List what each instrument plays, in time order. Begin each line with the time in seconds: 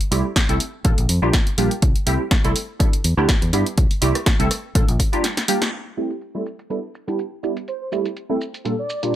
0.00 muted fingered electric bass stroke, closed hi-hat
0.11 fingered electric bass C2, analog polysynth G3 A3 C4 E4 G4, open hi-hat
0.36 kick, snare, closed hi-hat
0.49 fingered electric bass C2, analog polysynth G3 A3 C4 E4 A4, closed hi-hat
0.60 open hi-hat
0.84 fingered electric bass A#1, analog polysynth G3 A#3 D4 F4 A4, kick, closed hi-hat
0.98 fingered electric bass A#1, closed hi-hat
1.09 fingered electric bass F2, open hi-hat
1.22 fingered electric bass A#1, analog polysynth G3 A#3 D4 F4 G4
1.33 kick, snare, closed hi-hat
1.47 closed hi-hat
1.58 fingered electric bass A#1, analog polysynth G3 A#3 D4 F4 G4, open hi-hat
1.71 closed hi-hat
1.82 fingered electric bass C2, kick, closed hi-hat
1.96 closed hi-hat
2.06 fingered electric bass C2, analog polysynth G3 A3 C4 E4 G4, open hi-hat
2.31 kick, snare, closed hi-hat
2.44 fingered electric bass C2, analog polysynth G3 A3 C4 E4 A4, closed hi-hat
2.56 open hi-hat
2.80 analog polysynth G3 B3 D4 E4 A4, kick, closed hi-hat
2.93 closed hi-hat
3.04 fingered electric bass E2, open hi-hat
3.17 fingered electric bass D2, analog polysynth G3 B3 D4 E4 G4
3.29 kick, snare, closed hi-hat
3.42 fingered electric bass E2, closed hi-hat
3.53 fingered electric bass G2, analog polysynth G3 B3 D4 E4 G4, open hi-hat
3.66 closed hi-hat
3.78 fingered electric bass C2, kick, closed hi-hat
3.91 muted fingered electric bass stroke, open hi-hat
4.01 fingered electric bass C2, analog polysynth G3 A3 C4 E4 G4, open hi-hat
4.15 cross-stick, closed hi-hat
4.26 kick, snare, closed hi-hat
4.39 fingered electric bass C2, analog polysynth G3 A3 C4 E4 A4, closed hi-hat
4.51 cross-stick, open hi-hat
4.75 fingered electric bass A#1, analog polysynth G3 A#3 D4 F4 A4, kick, closed hi-hat
4.89 fingered electric bass A#1, closed hi-hat
5.00 kick, open hi-hat
5.13 analog polysynth G3 A#3 D4 F4 G4, closed hi-hat
5.24 snare, closed hi-hat
5.37 snare, closed hi-hat
5.48 analog polysynth G3 A#3 D4 F4 G4, open hi-hat
5.62 snare, closed hi-hat
5.97 analog polysynth G3 A3 C4 E4 G4, shaker
6.10 closed hi-hat, shaker
6.22 closed hi-hat, shaker
6.35 analog polysynth G3 A3 C4 E4 A4
6.46 shaker
6.59 closed hi-hat, shaker
6.70 analog polysynth G3 B3 D4 E4 A4, closed hi-hat, shaker
6.95 shaker
7.07 analog polysynth G3 B3 D4 E4 G4, closed hi-hat, shaker
7.19 closed hi-hat, shaker
7.43 analog polysynth G3 B3 D4 E4 G4, shaker
7.57 closed hi-hat, shaker
7.68 analog polysynth C5, closed hi-hat, shaker
7.81 analog polysynth C5
7.92 analog polysynth G3 A3 C4 E4 G4, shaker
8.05 closed hi-hat, shaker
8.17 closed hi-hat, shaker
8.29 analog polysynth G3 A3 C4 E4 A4
8.41 shaker
8.54 closed hi-hat, shaker
8.65 analog polysynth A#2 G3 A#3 D4 F4 A4, closed hi-hat, shaker
8.79 analog polysynth D5
8.90 shaker
9.02 analog polysynth A#2 G3 A#3 D4 F4 G4, closed hi-hat, shaker